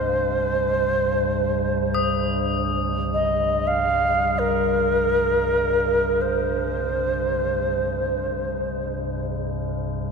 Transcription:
0.00 8.07 C2 medium
0.00 8.08 G2 medium
0.00 2.25 C5 medium
1.95 9.91 D#6 medium
3.14 3.69 D#5 medium
3.67 4.40 F5 medium
4.39 6.23 A#4 medium
6.21 8.90 C5 medium
8.09 10.12 C2 medium
8.09 10.12 G2 medium

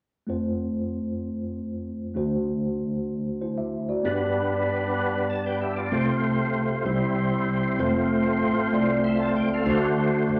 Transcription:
0.27 2.12 F2 soft
0.27 2.12 A3 soft
0.27 2.12 C4 soft
0.27 2.13 F4 soft
0.27 2.13 C5 soft
2.14 4.00 D2 soft
2.14 4.00 D3 soft
2.14 3.99 A3 soft
2.14 4.00 D4 soft
2.14 3.39 F#4 soft
2.14 3.40 C5 medium
3.41 3.57 E4 soft
3.41 3.56 C5 soft
3.58 3.87 E5 soft
3.89 4.19 F#4 soft
3.89 4.05 D5 soft
4.03 5.88 G2 medium
4.03 5.89 G3 medium
4.03 5.88 B3 soft
4.03 5.89 B3 soft
4.03 5.88 D4 soft
4.03 5.89 D4 soft
4.03 5.89 G4 soft
4.03 5.27 B4 medium
4.03 5.89 D5 medium
5.30 5.45 A5 soft
5.46 5.61 B4 soft
5.46 5.60 G5 soft
5.61 5.76 G4 soft
5.61 5.76 E5 soft
5.76 5.91 F4 soft
5.76 6.06 D5 soft
5.92 6.82 C2 soft
5.92 6.85 C3 medium
5.92 6.82 C3 medium
5.92 6.85 A3 soft
5.92 6.86 A3 medium
5.92 6.84 C4 medium
5.92 6.84 C4 soft
5.92 6.86 F4 soft
5.92 6.85 C5 medium
6.85 7.75 C2 soft
6.85 7.75 C3 soft
6.85 7.79 G3 soft
6.85 7.79 G3 medium
6.85 7.78 C4 soft
6.85 7.79 C4 soft
6.85 6.92 D#4 soft
6.85 7.79 E4 soft
6.85 7.79 C5 medium
6.92 7.82 E4 soft
7.78 8.37 F1 medium
7.78 7.85 G#3 medium
7.78 9.63 A3 medium
7.78 8.57 C4 medium
7.78 9.63 C4 medium
7.78 8.57 F4 medium
7.78 9.63 F4 medium
7.78 8.57 C5 medium
7.78 9.02 C5 medium
7.85 8.60 A3 medium
8.41 8.70 A1 medium
8.72 9.31 C2 medium
8.72 9.50 A3 medium
8.72 9.50 C4 medium
8.72 9.51 F4 soft
8.72 9.51 D5 medium
9.03 9.19 E5 soft
9.03 9.18 C6 soft
9.19 9.35 C5 soft
9.19 9.34 A5 medium
9.35 9.64 C#2 medium
9.35 9.50 G5 medium
9.53 9.82 A4 soft
9.53 9.82 F5 soft
9.66 10.24 D2 medium
9.66 10.40 D3 medium
9.66 10.40 A3 medium
9.66 10.40 D4 medium
9.66 10.40 F#4 medium
9.66 10.40 C5 medium
10.29 10.40 F#2 medium

